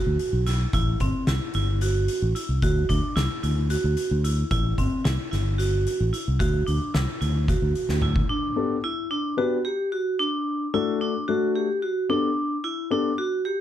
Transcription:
Already playing: F#4
0.07 D2
0.19 closed hi-hat
0.33 B1
0.46 E4, snare, closed hi-hat
0.73 A1 E4, kick, closed hi-hat
1.00 G1 C4, kick, closed hi-hat
1.27 C2 E4, snare, closed hi-hat
1.54 G1 E4, closed hi-hat
1.81 F#4, closed hi-hat
2.08 closed hi-hat
2.22 A1
2.35 E4, closed hi-hat
2.49 C2
2.62 D2 F#4, kick, closed hi-hat
2.89 D2 D4, kick, closed hi-hat
3.16 C2 E4, snare, closed hi-hat
3.43 D2 E4, closed hi-hat
3.70 F#4, closed hi-hat
3.84 D2
3.97 closed hi-hat
4.11 D2
4.24 E4, closed hi-hat
4.51 A1 E4, kick, closed hi-hat
4.78 G1 C4, kick, closed hi-hat
5.04 C2 E4, snare, closed hi-hat
5.31 G1 E4, snare, closed hi-hat
5.58 F#4, closed hi-hat
5.87 closed hi-hat
6.00 A1
6.13 E4, closed hi-hat
6.28 C2
6.40 D2 F#4, kick, closed hi-hat
6.67 D2 D4, closed hi-hat
6.94 C2 E4, snare, closed hi-hat
7.21 D2 E4, closed hi-hat
7.48 F#4, kick, closed hi-hat
7.62 D2
7.75 closed hi-hat
7.89 D2, snare
8.02 E4, mid tom
8.16 kick
8.30 D4
8.56 B3 D4 G4 A4
8.84 E4
9.11 D4
9.37 B3 D4 F#4 G4 B4
9.65 G4
9.92 F#4
10.19 D4
10.74 A3 D4 E4 F#4 A4
11.01 D4
11.28 A3 D4 F#4 A4
11.55 G4
11.82 F#4
12.09 B3 D4 G4 A4
12.64 E4
12.91 B3 D4 G4 A4
13.18 F#4
13.45 G4

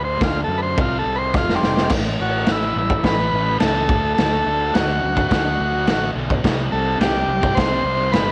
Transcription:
Already playing: D2 D3 A3
0.04 C5
0.21 D2 D3 A3 F4, kick, snare, crash
0.44 F#2 A4
0.49 D3 A3
0.58 B4
0.62 C5
0.77 C2 C3 G3 C4, kick, crash
0.81 F4
0.99 A4
1.05 C2 C3 G3
1.15 B4 C5
1.34 F1 F2 C3 F3 F4, kick, snare
1.49 snare
1.55 G3 C4
1.62 F1 F2 C3, snare
1.77 snare
1.89 A1 A2 E3, kick, snare, crash
1.94 A3
2.19 A1 A2 E3 F#4
2.24 A3
2.46 A1 A2 E3, snare, crash
2.51 A3 E4
2.62 A3
2.66 E3
2.76 A1 E4, muted distorted electric guitar stroke
2.89 A3, kick
2.94 E3
3.04 A1 B4, kick, snare, crash
3.18 A3
3.22 E3
3.31 A1 A2 E3
3.36 A3
3.46 E3 A3
3.60 C#2 A2 E3 A4, snare, crash
3.64 A3
3.75 A3
3.79 E3
3.88 D2 D3 A3 D4, kick
4.14 D3 A4, crash
4.18 D2 A3 D4, snare
4.45 D2 D3 A3
4.49 D4
4.72 D2 D3 A3 D4 F#4, snare, crash
4.87 D4
4.91 A3
5.02 D2, muted distorted electric guitar stroke
5.15 D4, kick
5.19 A3
5.28 D2 F#4, kick, snare, crash
5.44 D4
5.48 A3
5.58 D2 D3 A3 D4
5.73 D4
5.77 A3
5.87 A1 D3 A3, snare, crash
5.91 D4
6.00 D4
6.05 A3
6.14 B1 D3 A3 D4
6.30 kick
6.43 C2 C3 G3, kick, snare, crash
6.47 C4
6.69 C2 C3 G3 A4
6.74 C4
6.98 C2 C3 G3 G4, snare, crash
7.03 C4
7.12 C4
7.17 G3
7.28 C2, muted distorted electric guitar stroke
7.41 C4, kick
7.45 G3
7.55 C2 C5, kick, snare, crash
7.70 C4
7.75 G3
7.83 C2 C3 G3
7.87 C4
7.96 C4
8.01 G3
8.12 G1 C3 G3 B4, snare, crash
8.16 C4
8.25 C4

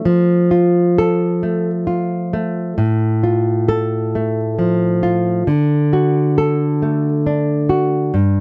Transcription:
0.05 F3
0.51 F4
0.98 A4
1.43 A3
1.87 F4
2.33 A3
2.78 A2
3.23 F4
3.68 A4
4.15 A3
4.59 F3
5.03 F4
5.47 D3
5.93 F#4
6.38 A4
6.82 A3
7.26 D4
7.69 F#4
8.14 G2

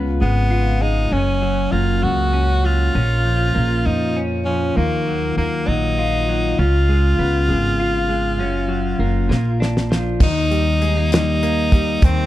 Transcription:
Already playing: C#2 C#3 G#3 B3 F4
0.21 G#1 G#3 B3
0.51 F4
0.81 G#3 D#4
1.11 F#1 F#2 C#4
1.42 F#3
1.72 F#1 A#3 F4
2.03 C#2 F#3 F#4
2.33 C#4
2.64 F#3 F4
2.94 A#1 A#2 C#4
3.25 F3
3.54 A#1 A#3
3.86 F2 F3 D#4
4.17 C#4
4.45 F3 C#4
4.77 D#2 D#3 A#3 F4
5.08 F#3
5.37 D#2 A#3
5.67 A#1 F#3 D#4
5.99 F4
6.29 F#3
6.58 C#2 C#3 F4
6.89 G#3
7.19 C#2 B3
7.49 G#1 G#3
7.80 F4
8.09 G#3
8.39 F#1 F#2 C#4
8.69 F#3
8.99 F#1 A#3
9.29 A#1 A#2, snare
9.60 D4, snare
9.77 snare
9.91 F3, snare
10.20 D#2 D#3 D#4, kick, crash
10.51 G3, closed hi-hat
10.82 G#3, closed hi-hat
10.97 A#3
11.12 G3 D#4, snare, closed hi-hat
11.43 A#3, closed hi-hat
11.72 G3, kick, closed hi-hat
12.02 D#2 D#3 C4, kick, closed hi-hat

